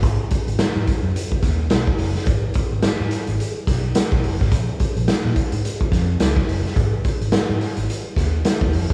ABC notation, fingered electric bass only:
X:1
M:4/4
L:1/16
Q:"Swing 16ths" 1/4=107
K:G#dor
V:1 name="Fingered electric bass" clef=bass
G,,, z2 G,,, z G,, z F,, z2 D,,2 B,,, z F,,, z | G,,, z2 G,,, z G,, z G,,, z2 B,,,2 z B,,, F,,, G,,, | A,,, z2 A,,, z A,, z G,, z2 E,,2 C,, z F,,, z | G,,, z2 G,,, z G,, z G,,, z2 D,,2 z D,, E,,, F,,, |]